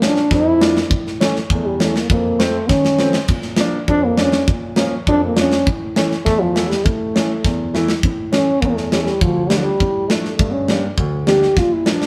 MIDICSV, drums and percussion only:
0, 0, Header, 1, 2, 480
1, 0, Start_track
1, 0, Tempo, 594648
1, 738, Time_signature, 2, 2, 24, 8
1, 5536, Tempo, 589391
1, 9776, End_track
2, 0, Start_track
2, 0, Title_t, "Drums"
2, 17, Note_on_c, 9, 38, 89
2, 97, Note_off_c, 9, 38, 0
2, 132, Note_on_c, 9, 38, 23
2, 213, Note_off_c, 9, 38, 0
2, 250, Note_on_c, 9, 36, 67
2, 257, Note_on_c, 9, 38, 23
2, 330, Note_off_c, 9, 36, 0
2, 338, Note_off_c, 9, 38, 0
2, 496, Note_on_c, 9, 38, 82
2, 577, Note_off_c, 9, 38, 0
2, 619, Note_on_c, 9, 38, 54
2, 700, Note_off_c, 9, 38, 0
2, 733, Note_on_c, 9, 36, 91
2, 813, Note_off_c, 9, 36, 0
2, 862, Note_on_c, 9, 38, 20
2, 943, Note_off_c, 9, 38, 0
2, 979, Note_on_c, 9, 38, 89
2, 1060, Note_off_c, 9, 38, 0
2, 1098, Note_on_c, 9, 38, 26
2, 1179, Note_off_c, 9, 38, 0
2, 1211, Note_on_c, 9, 36, 74
2, 1292, Note_off_c, 9, 36, 0
2, 1455, Note_on_c, 9, 38, 86
2, 1535, Note_off_c, 9, 38, 0
2, 1580, Note_on_c, 9, 38, 65
2, 1661, Note_off_c, 9, 38, 0
2, 1694, Note_on_c, 9, 36, 87
2, 1774, Note_off_c, 9, 36, 0
2, 1935, Note_on_c, 9, 38, 87
2, 2016, Note_off_c, 9, 38, 0
2, 2174, Note_on_c, 9, 38, 45
2, 2175, Note_on_c, 9, 36, 72
2, 2255, Note_off_c, 9, 36, 0
2, 2255, Note_off_c, 9, 38, 0
2, 2298, Note_on_c, 9, 38, 52
2, 2379, Note_off_c, 9, 38, 0
2, 2410, Note_on_c, 9, 38, 59
2, 2490, Note_off_c, 9, 38, 0
2, 2528, Note_on_c, 9, 38, 66
2, 2609, Note_off_c, 9, 38, 0
2, 2647, Note_on_c, 9, 49, 64
2, 2652, Note_on_c, 9, 36, 80
2, 2727, Note_off_c, 9, 49, 0
2, 2733, Note_off_c, 9, 36, 0
2, 2762, Note_on_c, 9, 38, 21
2, 2843, Note_off_c, 9, 38, 0
2, 2878, Note_on_c, 9, 38, 88
2, 2958, Note_off_c, 9, 38, 0
2, 3132, Note_on_c, 9, 36, 60
2, 3213, Note_off_c, 9, 36, 0
2, 3370, Note_on_c, 9, 38, 82
2, 3451, Note_off_c, 9, 38, 0
2, 3490, Note_on_c, 9, 38, 60
2, 3571, Note_off_c, 9, 38, 0
2, 3614, Note_on_c, 9, 36, 92
2, 3695, Note_off_c, 9, 36, 0
2, 3845, Note_on_c, 9, 38, 81
2, 3925, Note_off_c, 9, 38, 0
2, 4093, Note_on_c, 9, 36, 65
2, 4173, Note_off_c, 9, 36, 0
2, 4331, Note_on_c, 9, 38, 88
2, 4412, Note_off_c, 9, 38, 0
2, 4452, Note_on_c, 9, 38, 60
2, 4533, Note_off_c, 9, 38, 0
2, 4575, Note_on_c, 9, 36, 92
2, 4656, Note_off_c, 9, 36, 0
2, 4813, Note_on_c, 9, 38, 93
2, 4894, Note_off_c, 9, 38, 0
2, 4936, Note_on_c, 9, 38, 23
2, 5017, Note_off_c, 9, 38, 0
2, 5055, Note_on_c, 9, 36, 63
2, 5059, Note_on_c, 9, 38, 27
2, 5136, Note_off_c, 9, 36, 0
2, 5140, Note_off_c, 9, 38, 0
2, 5294, Note_on_c, 9, 38, 76
2, 5375, Note_off_c, 9, 38, 0
2, 5421, Note_on_c, 9, 38, 57
2, 5502, Note_off_c, 9, 38, 0
2, 5535, Note_on_c, 9, 36, 88
2, 5616, Note_off_c, 9, 36, 0
2, 5780, Note_on_c, 9, 38, 74
2, 5861, Note_off_c, 9, 38, 0
2, 6014, Note_on_c, 9, 36, 68
2, 6016, Note_on_c, 9, 38, 23
2, 6095, Note_off_c, 9, 36, 0
2, 6098, Note_off_c, 9, 38, 0
2, 6259, Note_on_c, 9, 38, 47
2, 6341, Note_off_c, 9, 38, 0
2, 6372, Note_on_c, 9, 38, 69
2, 6453, Note_off_c, 9, 38, 0
2, 6493, Note_on_c, 9, 36, 90
2, 6574, Note_off_c, 9, 36, 0
2, 6732, Note_on_c, 9, 38, 82
2, 6813, Note_off_c, 9, 38, 0
2, 6973, Note_on_c, 9, 36, 59
2, 7055, Note_off_c, 9, 36, 0
2, 7096, Note_on_c, 9, 38, 23
2, 7177, Note_off_c, 9, 38, 0
2, 7216, Note_on_c, 9, 38, 79
2, 7298, Note_off_c, 9, 38, 0
2, 7334, Note_on_c, 9, 38, 21
2, 7416, Note_off_c, 9, 38, 0
2, 7454, Note_on_c, 9, 36, 92
2, 7535, Note_off_c, 9, 36, 0
2, 7688, Note_on_c, 9, 38, 87
2, 7770, Note_off_c, 9, 38, 0
2, 7934, Note_on_c, 9, 36, 68
2, 8016, Note_off_c, 9, 36, 0
2, 8175, Note_on_c, 9, 38, 83
2, 8256, Note_off_c, 9, 38, 0
2, 8297, Note_on_c, 9, 38, 19
2, 8378, Note_off_c, 9, 38, 0
2, 8414, Note_on_c, 9, 36, 88
2, 8496, Note_off_c, 9, 36, 0
2, 8652, Note_on_c, 9, 38, 76
2, 8733, Note_off_c, 9, 38, 0
2, 8890, Note_on_c, 9, 36, 62
2, 8971, Note_off_c, 9, 36, 0
2, 9129, Note_on_c, 9, 38, 73
2, 9211, Note_off_c, 9, 38, 0
2, 9255, Note_on_c, 9, 38, 23
2, 9336, Note_off_c, 9, 38, 0
2, 9368, Note_on_c, 9, 38, 28
2, 9370, Note_on_c, 9, 36, 83
2, 9450, Note_off_c, 9, 38, 0
2, 9452, Note_off_c, 9, 36, 0
2, 9610, Note_on_c, 9, 38, 85
2, 9692, Note_off_c, 9, 38, 0
2, 9737, Note_on_c, 9, 38, 50
2, 9776, Note_off_c, 9, 38, 0
2, 9776, End_track
0, 0, End_of_file